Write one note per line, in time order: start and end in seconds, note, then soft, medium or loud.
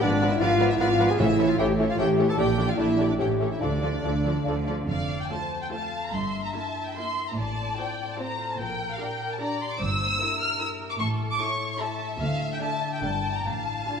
0.00 0.37 G#1 medium
0.00 1.21 G#2 medium
0.00 0.37 G#2 medium
0.00 0.10 F3 medium
0.00 0.10 B3 medium
0.00 1.21 D4 soft
0.00 0.33 D4 medium
0.00 0.31 D4 medium
0.00 0.10 B4 medium
0.00 0.39 D5 soft
0.00 0.09 D5 medium
0.00 0.31 D5 medium
0.00 0.06 F5 medium
0.00 0.69 D6 medium
0.12 1.09 G#3 soft
0.19 0.29 F3 medium
0.19 0.30 B3 medium
0.19 1.21 B3 medium
0.19 0.30 B4 medium
0.19 0.29 D5 medium
0.19 0.25 F5 medium
0.31 0.42 E4 medium
0.31 0.98 F4 medium
0.31 0.41 E5 medium
0.38 0.75 G#1 medium
0.38 0.75 G#2 medium
0.38 0.49 F3 medium
0.38 0.50 B3 medium
0.38 0.70 F4 medium
0.38 0.49 B4 medium
0.38 1.21 D5 medium
0.38 0.49 D5 medium
0.38 0.44 F5 medium
0.38 0.70 F5 medium
0.50 0.89 B4 medium
0.58 0.68 F3 medium
0.58 0.70 B3 medium
0.58 0.68 B4 soft
0.58 0.68 D5 medium
0.58 0.64 F5 medium
0.58 0.79 F5 soft
0.70 0.83 E4 medium
0.70 0.82 E4 medium
0.70 0.80 E5 medium
0.70 1.21 D6 medium
0.79 1.15 G#1 medium
0.79 1.15 G#2 medium
0.79 0.88 F3 medium
0.79 0.89 B3 medium
0.79 1.10 F4 medium
0.79 1.12 F4 medium
0.79 0.88 B4 medium
0.79 0.88 D5 medium
0.79 0.85 F5 medium
0.79 1.09 F5 medium
0.79 1.21 F5 medium
0.90 1.21 B4 medium
0.97 1.07 F3 medium
0.97 1.09 B3 medium
0.97 1.21 F4 medium
0.97 1.07 B4 medium
0.97 1.08 D5 medium
0.97 1.03 F5 medium
1.09 1.21 G#3 medium
1.09 1.21 G#4 medium
1.09 1.20 G#4 medium
1.09 1.13 G#5 medium
1.18 1.54 A1 medium
1.18 1.54 A2 medium
1.18 2.40 A2 medium
1.18 1.75 A2 medium
1.18 1.27 E3 medium
1.18 1.28 C#4 medium
1.18 1.49 E4 medium
1.18 1.50 E4 medium
1.18 1.27 A4 medium
1.18 1.28 C#5 medium
1.18 1.24 E5 medium
1.18 1.48 E5 medium
1.30 2.27 E3 soft
1.38 1.47 E3 medium
1.38 1.48 C#4 medium
1.38 2.39 C#4 soft
1.38 1.47 A4 medium
1.38 1.47 C#5 medium
1.38 1.44 E5 medium
1.48 2.17 E4 medium
1.48 1.59 F4 medium
1.48 1.58 F5 medium
1.58 1.94 A1 medium
1.58 1.94 A2 medium
1.58 1.67 E3 medium
1.58 1.68 C#4 medium
1.58 1.72 G4 medium
1.58 2.39 A4 medium
1.58 1.67 A4 medium
1.58 1.67 C#5 medium
1.58 1.64 E5 medium
1.58 1.67 G5 medium
1.69 2.08 C#5 medium
1.78 1.87 E3 medium
1.78 1.88 C#4 medium
1.78 1.87 A4 soft
1.78 1.88 C#5 medium
1.78 1.84 E5 medium
1.78 1.98 E5 medium
1.89 1.99 F4 medium
1.89 1.99 F5 medium
1.89 2.40 A5 medium
1.98 2.33 A1 medium
1.98 2.33 A2 medium
1.98 2.07 E3 medium
1.98 2.07 C#4 medium
1.98 2.28 G4 medium
1.98 2.31 G4 medium
1.98 2.06 A4 medium
1.98 2.07 C#5 medium
1.98 2.04 E5 medium
1.98 2.40 E5 medium
1.98 2.07 G5 medium
2.09 2.40 C#5 medium
2.18 2.26 E3 medium
2.18 2.28 C#4 medium
2.18 2.40 E4 medium
2.18 2.26 A4 medium
2.18 2.27 C#5 medium
2.18 2.24 E5 medium
2.28 2.40 E3 soft
2.28 2.33 A4 medium
2.28 2.38 A4 medium
2.28 2.38 A5 medium
2.37 2.74 A#1 medium
2.37 2.73 A#2 medium
2.37 3.21 A#2 medium
2.37 2.46 D3 medium
2.37 2.47 D4 medium
2.37 2.50 G4 medium
2.37 2.46 G4 medium
2.37 2.68 G4 medium
2.37 2.43 D5 medium
2.37 2.47 D5 medium
2.37 2.67 G5 medium
2.48 2.67 A#3 soft
2.56 2.66 D3 medium
2.56 2.67 D4 medium
2.56 3.21 D4 soft
2.56 2.66 G4 medium
2.56 2.62 D5 soft
2.56 2.67 D5 soft
2.67 3.21 A#3 soft
2.67 2.72 F4 medium
2.67 2.73 F4 medium
2.67 2.78 F5 medium
2.75 3.14 A#1 medium
2.75 3.14 A#2 medium
2.75 2.87 D3 soft
2.75 2.87 D4 soft
2.75 3.07 E4 medium
2.75 2.98 G4 soft
2.75 2.86 G4 soft
2.75 2.83 D5 soft
2.75 3.08 E5 medium
2.80 3.09 E4 medium
2.80 2.88 D5 soft
2.89 3.21 D5 soft
2.97 3.07 D3 soft
2.97 3.08 D4 soft
2.97 3.07 G4 soft
2.97 3.64 G4 soft
2.97 3.03 D5 soft
2.97 3.08 D5 soft
3.08 3.13 D4 medium
3.08 3.14 D4 medium
3.08 3.13 D5 medium
3.08 3.63 G5 soft
3.18 3.57 A1 medium
3.18 3.57 A2 medium
3.18 3.64 A2 soft
3.18 3.28 E3 soft
3.18 3.28 C#4 medium
3.18 3.49 G4 medium
3.18 3.51 G4 medium
3.18 3.27 A4 soft
3.18 3.28 C#5 soft
3.18 3.24 E5 soft
3.18 3.28 G5 medium
3.30 3.64 E3 soft
3.38 3.49 E3 soft
3.38 3.49 C#4 soft
3.38 3.64 C#4 soft
3.38 3.49 A4 soft
3.38 3.49 C#5 soft
3.38 3.44 E5 soft
3.50 3.61 E4 medium
3.50 3.64 E4 soft
3.50 3.61 E5 soft
3.60 3.99 D2 soft
3.60 3.99 D3 medium
3.60 4.90 D3 soft
3.60 3.70 F3 soft
3.60 4.66 D4 medium
3.60 3.71 D4 soft
3.60 4.68 D4 medium
3.60 3.70 A4 soft
3.60 4.66 D5 medium
3.60 3.71 D5 soft
3.60 3.67 F5 soft
3.72 4.77 A3 soft
3.82 3.92 F3 soft
3.82 3.92 D4 soft
3.82 3.92 A4 soft
3.82 3.92 D5 soft
3.82 3.88 F5 soft
3.93 4.66 F4 soft
4.03 4.41 D2 soft
4.03 4.42 D3 soft
4.03 4.13 F3 soft
4.03 4.12 D4 soft
4.03 5.29 A4 soft
4.03 4.13 A4 soft
4.03 4.12 D5 soft
4.03 4.09 F5 soft
4.15 4.55 D5 soft
4.23 4.34 F3 soft
4.23 4.34 D4 soft
4.23 4.34 A4 soft
4.23 4.34 D5 soft
4.23 4.29 F5 soft
4.23 4.45 F5 soft
4.36 6.15 A5 soft
4.45 4.83 D2 soft
4.45 4.83 D3 soft
4.45 4.56 F3 soft
4.45 4.55 D4 soft
4.45 4.56 A4 soft
4.45 4.55 D5 soft
4.45 4.51 F5 soft
4.45 6.15 F5 soft
4.56 4.90 D5 soft
4.65 4.77 F3 soft
4.65 4.75 D4 soft
4.65 5.91 F4 soft
4.65 4.77 A4 soft
4.65 4.75 D5 soft
4.65 4.73 F5 soft
4.78 6.15 A3 soft
4.88 5.22 F1 soft
4.88 5.21 F2 medium
4.88 6.15 F2 soft
4.88 5.28 D5 medium
4.88 5.18 F5 medium
5.10 6.15 C4 soft
5.21 5.25 G5 medium
5.30 5.62 A3 soft
5.30 5.61 F4 soft
5.30 5.71 A4 soft
5.30 5.72 C5 soft
5.30 5.60 A5 medium
5.51 6.15 C5 soft
5.62 5.66 G5 soft
5.72 6.03 A3 soft
5.72 6.03 F4 soft
5.72 6.15 A4 soft
5.72 6.14 F5 soft
5.72 6.02 A5 medium
5.92 6.15 F4 soft
6.03 6.13 A#5 soft
6.12 6.46 G1 soft
6.12 6.45 G2 soft
6.12 7.39 G2 soft
6.12 7.37 E5 medium
6.12 6.44 C6 medium
6.34 7.39 A#3 soft
6.44 6.54 A#5 medium
6.54 6.86 A#3 soft
6.54 6.86 E4 soft
6.54 6.95 A#4 soft
6.54 6.85 A5 medium
6.76 7.16 E4 soft
6.87 6.96 G5 medium
6.96 7.27 A#3 soft
6.96 7.27 E4 soft
6.96 7.39 A#4 soft
6.96 7.26 C6 medium
7.18 7.39 E4 soft
7.29 7.38 A#5 soft
7.36 7.70 A1 medium
7.36 7.69 A2 medium
7.36 8.62 A2 soft
7.36 8.18 D5 medium
7.36 7.78 A5 medium
7.58 8.61 C4 soft
7.78 8.09 C4 soft
7.78 8.09 F4 soft
7.78 8.19 A4 soft
7.78 8.09 G5 medium
8.00 8.61 C5 soft
8.11 8.20 A5 soft
8.19 8.49 C4 soft
8.19 8.49 F4 soft
8.19 8.61 A4 soft
8.19 8.59 C5 soft
8.19 8.49 A#5 medium
8.40 8.61 F4 soft
8.52 8.61 A5 medium
8.59 8.91 A#1 soft
8.59 8.91 A#2 medium
8.59 9.82 A#2 soft
8.59 9.39 A#4 medium
8.59 8.90 G5 medium
8.80 10.00 A#3 soft
8.92 9.01 F5 medium
9.00 9.30 D4 soft
9.00 9.30 G4 soft
9.00 9.40 D5 soft
9.00 9.31 G5 medium
9.21 10.39 A#4 soft
9.32 9.41 A5 medium
9.40 9.70 D4 medium
9.40 9.70 G4 medium
9.40 9.80 D5 medium
9.40 9.82 D5 soft
9.40 9.60 A#5 medium
9.61 10.79 G4 soft
9.61 9.71 C6 medium
9.72 9.81 D6 medium
9.80 10.12 G1 medium
9.80 10.12 G2 medium
9.80 11.02 G2 soft
9.80 10.21 C5 medium
9.80 10.40 E6 medium
10.01 11.01 A#3 soft
10.20 10.49 E4 soft
10.20 10.99 A#4 soft
10.20 10.50 A#4 soft
10.20 10.59 E5 soft
10.40 11.01 A#4 soft
10.40 10.59 F6 medium
10.60 10.89 E4 medium
10.60 10.89 A#4 soft
10.60 11.39 E5 soft
10.60 10.68 E6 medium
10.80 11.01 G4 soft
10.91 10.94 D6 medium
10.99 11.31 A1 medium
10.99 11.31 A2 medium
10.99 12.22 A2 medium
10.99 11.39 A4 medium
10.99 11.07 C#6 medium
11.21 12.40 A3 soft
11.30 11.40 D6 medium
11.39 11.70 E4 medium
11.39 11.70 A4 soft
11.39 11.80 C#5 medium
11.39 11.79 E5 soft
11.39 11.70 C#6 medium
11.60 12.82 A4 soft
11.71 11.80 C#6 medium
11.79 12.10 E4 medium
11.79 12.10 A4 medium
11.79 12.22 E5 soft
11.79 13.04 E5 medium
11.79 12.00 A5 medium
12.01 12.22 E4 soft
12.20 12.53 D2 medium
12.20 12.78 D3 soft
12.20 13.05 D3 medium
12.20 12.49 F5 medium
12.41 13.05 A3 soft
12.52 12.56 G5 medium
12.61 12.93 D4 soft
12.61 12.92 A4 soft
12.61 13.24 D5 soft
12.61 12.92 A5 medium
12.83 13.05 A4 soft
12.93 13.03 G5 medium
13.02 13.36 G1 medium
13.02 13.36 G2 medium
13.02 13.47 G2 soft
13.02 13.34 D4 soft
13.02 13.34 A#4 soft
13.02 13.44 G5 soft
13.02 13.34 A5 medium
13.25 13.47 G4 soft
13.25 13.89 D5 soft
13.35 13.46 A#5 medium
13.45 13.79 A1 soft
13.45 13.79 A2 medium
13.45 14.00 A2 soft
13.45 14.00 F5 soft
13.45 14.00 A5 medium
13.68 14.00 A3 soft
13.88 14.00 D4 soft
13.88 14.00 F4 soft
13.88 14.00 D5 soft